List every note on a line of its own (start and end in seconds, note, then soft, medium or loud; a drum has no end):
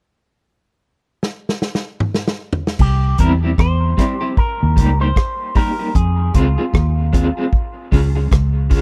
1.23 snare medium
1.49 snare medium
1.62 snare medium
1.75 snare medium
2.00 mid tom medium
2.14 snare medium
2.28 snare medium
2.53 floor tom medium
2.67 snare medium
2.79 3.14 C2 loud
2.79 3.20 G4 medium
2.79 kick loud
2.79 crash medium
3.18 3.53 E2 medium
3.18 3.32 G3 medium
3.18 3.32 C4 loud
3.18 3.32 E4 loud
3.18 3.32 G4 medium
3.18 3.31 A#4 medium
3.18 kick medium
3.18 closed hi-hat medium
3.43 3.50 G3 soft
3.43 3.50 C4 soft
3.43 3.50 E4 medium
3.43 3.49 G4 medium
3.58 3.93 E2 loud
3.58 4.38 C5 loud
3.58 kick medium
3.58 cross-stick loud
3.97 4.10 G3 medium
3.97 4.11 C4 medium
3.97 4.11 E4 medium
3.97 4.11 G4 loud
3.97 kick medium
3.97 cross-stick medium
3.97 closed hi-hat medium
4.21 4.29 G3 medium
4.21 4.28 C4 medium
4.21 4.28 E4 medium
4.21 4.28 G4 medium
4.37 4.97 A#4 medium
4.37 kick loud
4.63 4.75 D#2 medium
4.76 5.11 C#2 medium
4.76 4.89 G3 medium
4.76 4.89 A#3 medium
4.76 4.90 D#4 medium
4.76 4.90 G4 medium
4.76 kick medium
4.76 closed hi-hat medium
5.00 5.08 G3 soft
5.00 5.07 A#3 medium
5.00 5.07 D#4 soft
5.00 5.07 G4 medium
5.00 5.56 C5 loud
5.16 kick loud
5.16 cross-stick loud
5.55 5.68 G3 medium
5.55 5.68 A#3 medium
5.55 5.69 D#4 medium
5.55 5.69 G4 medium
5.55 5.95 A#4 medium
5.55 kick loud
5.55 open hi-hat medium
5.79 5.87 G3 soft
5.79 5.86 A#3 medium
5.79 5.86 D#4 medium
5.79 5.86 G4 medium
5.95 6.30 F2 medium
5.95 6.32 G#4 medium
5.95 kick loud
5.95 hi-hat pedal medium
6.34 6.56 C#2 medium
6.34 6.47 G#3 medium
6.34 6.47 C4 medium
6.34 6.48 F4 medium
6.34 8.67 F4 medium
6.34 6.48 G#4 loud
6.34 kick medium
6.34 closed hi-hat medium
6.58 6.65 G#3 medium
6.58 6.65 C4 medium
6.58 6.65 F4 medium
6.58 6.65 G#4 medium
6.74 7.29 D#2 medium
6.74 kick medium
6.74 cross-stick loud
7.13 7.26 G#3 medium
7.13 7.26 C4 medium
7.13 7.26 F4 medium
7.13 7.27 G#4 medium
7.13 kick medium
7.13 closed hi-hat medium
7.37 7.44 G#3 medium
7.37 7.44 C4 medium
7.37 7.44 F4 medium
7.37 7.44 G#4 medium
7.53 kick loud
7.92 8.27 C#2 medium
7.92 8.05 G#3 medium
7.92 8.05 C#4 medium
7.92 8.05 F4 medium
7.92 8.05 G#4 medium
7.92 kick medium
7.92 open hi-hat medium
8.15 8.23 G#3 soft
8.15 8.23 C#4 medium
8.15 8.23 F4 soft
8.15 8.22 G#4 medium
8.31 8.81 C#2 medium
8.31 kick loud
8.31 cross-stick loud
8.31 hi-hat pedal medium
8.70 8.81 G#3 medium
8.70 8.81 C#4 medium
8.70 8.81 F4 medium
8.70 8.81 G#4 medium
8.70 kick loud
8.70 open hi-hat medium